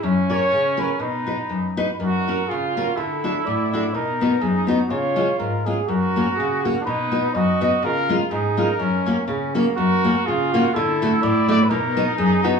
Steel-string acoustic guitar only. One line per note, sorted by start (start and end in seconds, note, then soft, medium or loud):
0.03 0.40 F#2 medium
0.30 0.40 C#4 medium
0.30 0.40 F#4 medium
0.30 0.40 A#4 medium
0.52 0.89 C#3 medium
0.77 0.88 C#4 medium
0.77 0.88 F#4 medium
0.77 0.88 A#4 medium
0.99 1.38 B2 medium
1.26 1.37 D#4 medium
1.26 1.37 F#4 soft
1.26 1.38 B4 medium
1.49 1.87 F#2 soft
1.77 1.87 D#4 medium
1.77 1.87 F#4 medium
1.77 1.87 B4 medium
2.00 2.37 F#2 medium
2.28 2.38 C#4 medium
2.28 2.37 F#4 medium
2.28 2.37 A#4 medium
2.51 2.87 C#3 medium
2.77 2.86 C#4 medium
2.77 2.86 F#4 medium
2.77 2.87 A#4 medium
2.97 3.35 D3 medium
3.24 3.34 D4 medium
3.24 3.34 F#4 medium
3.24 3.34 A4 medium
3.47 3.83 A2 medium
3.73 3.83 D4 medium
3.73 3.83 F#4 medium
3.73 3.83 A4 medium
3.95 4.31 B2 medium
4.21 4.31 B3 medium
4.21 4.31 D#4 medium
4.21 4.31 F#4 medium
4.42 4.79 F#2 medium
4.67 4.78 B3 medium
4.67 4.79 D#4 medium
4.67 4.79 F#4 medium
4.90 5.28 C#3 medium
5.16 5.27 G#3 medium
5.16 5.27 C#4 medium
5.16 5.27 F4 medium
5.40 5.77 G#2 medium
5.66 5.77 G#3 medium
5.66 5.77 C#4 medium
5.66 5.77 F4 medium
5.88 6.26 F#2 medium
6.16 6.26 A#3 medium
6.16 6.27 C#4 medium
6.16 6.27 F#4 medium
6.40 6.76 C#3 medium
6.65 6.75 A#3 medium
6.65 6.75 C#4 medium
6.65 6.75 F#4 medium
6.87 7.24 B2 medium
7.12 7.22 B3 medium
7.12 7.23 D#4 medium
7.12 7.23 F#4 medium
7.35 7.72 F#2 medium
7.61 7.71 B3 medium
7.61 7.72 D#4 medium
7.61 7.71 F#4 medium
7.82 8.19 C#3 medium
8.09 8.19 G#3 medium
8.09 8.19 C#4 medium
8.09 8.20 F4 medium
8.31 8.68 G#2 medium
8.57 8.67 G#3 medium
8.57 8.67 C#4 medium
8.57 8.67 F4 medium
8.79 9.16 F#2 medium
9.06 9.16 A#3 medium
9.06 9.16 C#4 medium
9.06 9.17 F#4 medium
9.28 9.65 C#3 medium
9.55 9.65 A#3 medium
9.55 9.65 C#4 medium
9.55 9.65 F#4 medium
9.78 10.15 F#2 medium
10.04 10.14 A#3 medium
10.04 10.14 C#4 medium
10.04 10.14 F#4 medium
10.28 10.64 C#3 medium
10.54 10.63 A#3 medium
10.54 10.63 C#4 medium
10.54 10.64 F#4 medium
10.76 11.12 D3 medium
11.02 11.11 A3 medium
11.02 11.11 D4 medium
11.02 11.12 F#4 medium
11.23 11.59 A2 medium
11.48 11.58 A3 medium
11.48 11.59 D4 medium
11.48 11.58 F#4 medium
11.71 12.06 B2 medium
11.97 12.06 B3 medium
11.97 12.06 D#4 medium
11.97 12.06 F#4 medium
12.18 12.54 F#2 medium
12.44 12.53 B3 medium
12.44 12.54 D#4 medium
12.44 12.54 F#4 medium